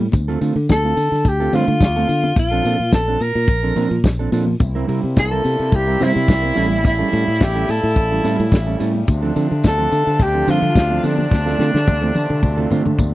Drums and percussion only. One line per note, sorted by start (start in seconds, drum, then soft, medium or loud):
0.00 high conga medium
0.12 kick loud
0.12 closed hi-hat medium
0.12 tambourine medium
0.12 muted conga medium
0.41 open hi-hat medium
0.41 tambourine soft
0.69 kick loud
0.69 snare loud
0.69 closed hi-hat medium
0.69 tambourine loud
0.69 high conga medium
0.97 open hi-hat medium
0.97 tambourine medium
0.97 muted conga soft
1.14 snare soft
1.25 kick loud
1.25 closed hi-hat medium
1.25 tambourine soft
1.53 open hi-hat medium
1.53 tambourine medium
1.53 muted conga medium
1.53 low conga medium
1.81 kick loud
1.81 snare loud
1.81 closed hi-hat medium
1.81 tambourine loud
1.81 high conga medium
2.09 open hi-hat medium
2.09 tambourine medium
2.09 high conga medium
2.23 high conga medium
2.36 kick loud
2.36 closed hi-hat medium
2.36 tambourine medium
2.36 muted conga medium
2.64 open hi-hat medium
2.64 tambourine soft
2.92 kick loud
2.92 snare loud
2.92 closed hi-hat medium
2.92 tambourine medium
2.92 high conga medium
3.20 open hi-hat medium
3.20 tambourine medium
3.20 muted conga medium
3.36 snare soft
3.47 kick loud
3.47 closed hi-hat medium
3.47 tambourine soft
3.47 muted conga soft
3.76 open hi-hat medium
3.76 tambourine medium
3.76 muted conga medium
4.04 kick loud
4.04 snare loud
4.04 closed hi-hat medium
4.04 tambourine loud
4.04 high conga medium
4.32 open hi-hat medium
4.32 tambourine medium
4.32 high conga medium
4.47 high conga medium
4.60 kick loud
4.60 closed hi-hat medium
4.60 tambourine medium
4.60 muted conga medium
4.88 open hi-hat medium
5.16 kick loud
5.16 snare loud
5.16 closed hi-hat medium
5.16 tambourine medium
5.16 high conga medium
5.44 open hi-hat medium
5.44 tambourine medium
5.44 muted conga medium
5.61 snare soft
5.72 kick loud
5.72 closed hi-hat medium
5.72 muted conga soft
6.00 open hi-hat medium
6.00 tambourine medium
6.00 muted conga medium
6.00 low conga medium
6.28 kick loud
6.28 snare loud
6.28 closed hi-hat medium
6.28 tambourine loud
6.28 high conga medium
6.56 open hi-hat medium
6.56 tambourine medium
6.56 high conga medium
6.71 high conga medium
6.84 kick loud
6.84 closed hi-hat medium
6.84 tambourine medium
6.84 muted conga medium
7.12 open hi-hat medium
7.12 tambourine soft
7.40 kick loud
7.40 snare loud
7.40 closed hi-hat medium
7.40 tambourine medium
7.40 high conga medium
7.68 open hi-hat medium
7.68 tambourine medium
7.68 muted conga medium
7.85 snare soft
7.96 kick loud
7.96 closed hi-hat medium
7.96 tambourine soft
7.96 muted conga soft
8.24 open hi-hat medium
8.24 tambourine soft
8.24 muted conga medium
8.52 kick loud
8.52 snare loud
8.52 closed hi-hat medium
8.52 tambourine loud
8.52 high conga medium
8.80 open hi-hat medium
8.80 tambourine medium
8.80 high conga medium
8.95 high conga medium
9.08 kick loud
9.08 closed hi-hat medium
9.08 tambourine medium
9.08 muted conga medium
9.36 open hi-hat medium
9.36 tambourine soft
9.64 kick loud
9.64 snare loud
9.64 closed hi-hat medium
9.64 tambourine loud
9.64 high conga medium
9.91 open hi-hat medium
9.91 tambourine medium
9.91 muted conga soft
10.08 snare soft
10.20 kick loud
10.20 closed hi-hat medium
10.20 tambourine soft
10.20 muted conga soft
10.48 open hi-hat medium
10.48 tambourine medium
10.48 muted conga medium
10.48 low conga medium
10.75 kick loud
10.75 snare loud
10.75 closed hi-hat medium
10.75 tambourine loud
10.75 high conga medium
11.03 open hi-hat medium
11.03 tambourine medium
11.03 high conga medium
11.18 high conga medium
11.31 kick loud
11.31 snare medium
11.31 tambourine medium
11.31 muted conga medium
11.47 snare soft
11.61 snare medium
11.75 snare medium
11.87 kick loud
11.87 high tom medium
11.87 tambourine loud
11.87 high conga medium
12.02 high tom medium
12.15 high tom medium
12.15 tambourine medium
12.15 muted conga soft
12.30 mid tom medium
12.43 kick loud
12.43 mid tom medium
12.43 tambourine soft
12.43 muted conga soft
12.57 mid tom medium
12.71 mid tom medium
12.71 tambourine medium
12.71 muted conga medium
12.86 mid tom medium
12.98 kick loud
12.98 mid tom loud
12.98 tambourine loud
12.98 high conga medium